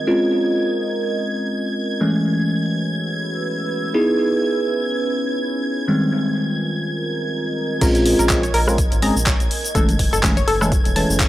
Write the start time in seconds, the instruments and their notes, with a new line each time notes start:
Already playing: ambient pad F4 A#4 D#5 G#5
0.07 tine electric piano G#3 C4 C#4 F4, string machine G#6
2.00 tine electric piano E3 G#3 A3 C#4, ambient pad F#4
2.10 ambient pad B4
2.63 ambient pad E6
3.94 tine electric piano B3 D#4 E4 G#4, ambient pad C#4
4.83 ambient pad G#5
5.88 tine electric piano D#3 G3 G#3 C4, ambient pad F4
5.98 ambient pad A#4
6.33 ambient pad D#5
7.81 analog synth bass A#1, tine electric piano G#3 C4 C#4 F4, synth arpeggio sound A#4, string machine G#6, kick, closed hi-hat, crash, shaker
7.95 closed hi-hat, shaker
8.06 open hi-hat
8.19 analog synth bass A#1, synth arpeggio sound A#4, closed hi-hat, shaker
8.29 tine electric piano G#3 C4 C#4 F4, kick, clap, closed hi-hat, shaker
8.43 synth arpeggio sound C#5, closed hi-hat, shaker
8.54 analog synth bass A#1, synth arpeggio sound A#4, open hi-hat
8.67 tine electric piano G#3 C4 C#4 F4, synth arpeggio sound A#4, cross-stick, shaker
8.78 kick, closed hi-hat, shaker
8.92 analog synth bass G#1, closed hi-hat, shaker
9.02 tine electric piano G#3 C4 C#4 G#4, synth arpeggio sound A#5, open hi-hat
9.16 analog synth bass A#1, shaker
9.26 synth arpeggio sound C#5, kick, clap, closed hi-hat, shaker
9.40 analog synth bass A#1, closed hi-hat, shaker
9.51 open hi-hat
9.65 closed hi-hat, shaker
9.75 analog synth bass F#1, tine electric piano E3 G#3 A3 C#4, synth arpeggio sound A4, ambient pad B4, kick, closed hi-hat, shaker
9.89 closed hi-hat, shaker
9.99 kick, open hi-hat
10.13 analog synth bass F#1, synth arpeggio sound A4, closed hi-hat, shaker
10.21 tine electric piano E3 G#3 A3 C#4, ambient pad E4, kick, clap, closed hi-hat, shaker
10.37 synth arpeggio sound C#5, closed hi-hat, shaker
10.48 analog synth bass F#1, synth arpeggio sound A4, open hi-hat
10.61 tine electric piano E3 G#3 A3 C#4, synth arpeggio sound A4, cross-stick, shaker
10.72 kick, closed hi-hat, shaker
10.85 analog synth bass E1, closed hi-hat, shaker
10.96 tine electric piano E3 G#3 A3 C#4, synth arpeggio sound A5, open hi-hat
11.10 analog synth bass F#1, shaker
11.20 synth arpeggio sound C#5, kick, clap, closed hi-hat, shaker